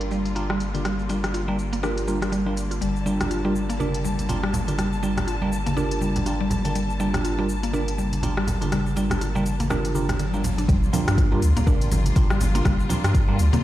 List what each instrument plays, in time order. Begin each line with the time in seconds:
Already playing: analog synth bass G1, string section D3 G3 A#3 F4, tine electric piano D4 F4 G4 A#4
0.01 closed hi-hat
0.11 synth pluck G3, shaker
0.26 closed hi-hat, shaker
0.35 tine electric piano D4 F4 G4 A#4, synth pluck F4, closed hi-hat, shaker
0.50 synth pluck G3, cross-stick
0.60 closed hi-hat, shaker
0.74 synth pluck D3, tine electric piano D4 F4 G4 A#4, closed hi-hat, shaker
0.85 synth pluck G3, cross-stick, closed hi-hat, shaker
0.99 shaker
1.09 synth pluck G3, tine electric piano D4 F4 G4 A#4, closed hi-hat, shaker
1.24 cross-stick, closed hi-hat, shaker
1.34 synth pluck F4, closed hi-hat, shaker
1.48 synth pluck G3, tine electric piano D4 F4 G4 A#4
1.59 shaker
1.73 synth pluck A#3, closed hi-hat, shaker
1.83 synth pluck D4, tine electric piano D4 F4 G4 A#4, cross-stick, shaker
1.98 closed hi-hat, shaker
2.08 synth pluck G3, tine electric piano D4 F4 G4 A#4, shaker
2.22 synth pluck G3, cross-stick, closed hi-hat, shaker
2.32 synth pluck G3, closed hi-hat, shaker
2.46 synth pluck G3, tine electric piano D4 F4 G4 A#4
2.57 closed hi-hat, shaker
2.71 synth pluck F4, closed hi-hat, shaker
2.81 analog synth bass G1, synth pluck G3, string section A5, closed hi-hat, shaker
2.96 shaker
3.06 synth pluck G3, tine electric piano D4 F4 G4 A#4, muted conga, shaker
3.20 cross-stick, closed hi-hat, low conga, shaker
3.31 synth pluck F4, closed hi-hat, shaker
3.45 synth pluck G3, tine electric piano D4 F4 G4 A#4, muted conga
3.56 shaker
3.69 synth pluck A#3, closed hi-hat, shaker
3.80 tine electric piano D4 F4 G4 A#4, synth pluck D4, muted conga, high conga, shaker
3.94 closed hi-hat
4.04 synth pluck G3, high conga, shaker
4.18 closed hi-hat, high conga, shaker
4.29 tine electric piano D4 F4 G4 A#4, synth pluck F4, closed hi-hat, muted conga, low conga, shaker
4.43 synth pluck G3, cross-stick
4.54 closed hi-hat, low conga, shaker
4.67 synth pluck D3, tine electric piano D4 F4 G4 A#4, closed hi-hat, muted conga, high conga, shaker
4.78 synth pluck G3, cross-stick, closed hi-hat, high conga, shaker
4.93 shaker
5.03 synth pluck G3, tine electric piano D4 F4 G4 A#4, muted conga, shaker
5.17 cross-stick, closed hi-hat, low conga, shaker
5.27 synth pluck F4, closed hi-hat, shaker
5.41 synth pluck G3, tine electric piano D4 F4 G4 A#4, muted conga, high conga
5.52 shaker
5.66 synth pluck A#3, closed hi-hat, high conga, shaker
5.77 synth pluck D4, tine electric piano D4 F4 G4 A#4, muted conga, high conga, shaker
5.91 closed hi-hat
6.01 synth pluck G3, high conga, shaker
6.16 closed hi-hat, low conga, shaker
6.26 tine electric piano D4 F4 G4 A#4, synth pluck F4, closed hi-hat, muted conga, shaker
6.41 synth pluck G3
6.50 closed hi-hat, low conga, shaker
6.65 synth pluck D3, tine electric piano D4 F4 G4 A#4, closed hi-hat, muted conga, shaker
6.75 synth pluck G3, closed hi-hat, riser, shaker
6.90 shaker
7.00 synth pluck G3, tine electric piano D4 F4 G4 A#4, muted conga, shaker
7.13 cross-stick, closed hi-hat, low conga, shaker
7.25 synth pluck F4, closed hi-hat, shaker
7.38 synth pluck G3, tine electric piano D4 F4 G4 A#4, muted conga
7.49 shaker
7.63 synth pluck A#3, closed hi-hat, shaker
7.73 tine electric piano D4 F4 G4 A#4, synth pluck D4, muted conga, high conga, shaker
7.88 closed hi-hat
7.98 synth pluck G3, high conga, shaker
8.12 closed hi-hat, high conga, shaker
8.23 tine electric piano D4 F4 G4 A#4, synth pluck F4, closed hi-hat, muted conga, low conga, shaker
8.37 synth pluck G3, cross-stick
8.47 closed hi-hat, low conga, shaker
8.61 synth pluck D3, tine electric piano D4 F4 G4 A#4, closed hi-hat, muted conga, high conga, shaker
8.72 synth pluck G3, cross-stick, closed hi-hat, high conga, shaker
8.87 shaker
8.96 synth pluck G3, tine electric piano D4 F4 G4 A#4, closed hi-hat, muted conga, shaker
9.10 cross-stick, closed hi-hat, low conga, shaker
9.21 synth pluck F4, closed hi-hat, shaker
9.35 synth pluck G3, tine electric piano D4 F4 G4 A#4, muted conga, high conga, shaker
9.46 closed hi-hat, shaker
9.60 synth pluck A#3, closed hi-hat, high conga, shaker
9.70 tine electric piano D4 F4 G4 A#4, synth pluck D4, cross-stick, muted conga, high conga, low conga, shaker
9.85 closed hi-hat, shaker
9.95 synth pluck D3, tine electric piano D4 F4 G4 A#4, high conga, shaker
10.09 cross-stick, closed hi-hat, low conga, shaker
10.19 synth pluck D3, closed hi-hat, muted conga, shaker
10.34 synth pluck G3, tine electric piano D4 F4 G4 A#4, shaker
10.44 closed hi-hat, low conga, shaker
10.58 synth pluck D4, closed hi-hat, muted conga, shaker
10.68 analog synth bass G1, string section D3 G3 A#3 F4, synth pluck G3, kick, closed hi-hat, impact, shaker
10.83 shaker
10.93 synth pluck F3, tine electric piano D4 F4 G4 A#4, open hi-hat, muted conga, low conga, shaker
11.07 analog synth bass G2, cross-stick, closed hi-hat, shaker
11.18 synth pluck F4, kick, closed hi-hat, shaker
11.32 synth pluck G3, tine electric piano D4 F4 G4 A#4, muted conga
11.42 analog synth bass D2, open hi-hat, shaker
11.57 synth pluck A#3, closed hi-hat, low conga, shaker
11.67 tine electric piano D4 F4 G4 A#4, synth pluck D4, kick, muted conga, high conga, shaker
11.81 analog synth bass G1, closed hi-hat, shaker
11.91 synth pluck F3, open hi-hat, high conga, low conga, shaker
12.05 closed hi-hat, high conga, shaker
12.16 tine electric piano D4 F4 G4 A#4, synth pluck F4, kick, closed hi-hat, muted conga, shaker
12.30 analog synth bass G1, synth pluck G3, cross-stick, shaker
12.41 open hi-hat, low conga, shaker
12.54 synth pluck A#3, tine electric piano D4 F4 G4 A#4, closed hi-hat, muted conga, high conga, shaker
12.65 analog synth bass G1, synth pluck G3, kick, cross-stick, closed hi-hat, high conga, shaker
12.80 shaker
12.89 synth pluck F3, tine electric piano D4 F4 G4 A#4, open hi-hat, muted conga, low conga, shaker
13.04 analog synth bass G2, cross-stick, closed hi-hat, shaker
13.14 synth pluck F4, kick, closed hi-hat, shaker
13.28 synth pluck G3, tine electric piano D4 F4 G4 A#4, muted conga, high conga
13.39 analog synth bass D2, open hi-hat, shaker
13.53 synth pluck A#3, closed hi-hat, high conga, low conga, shaker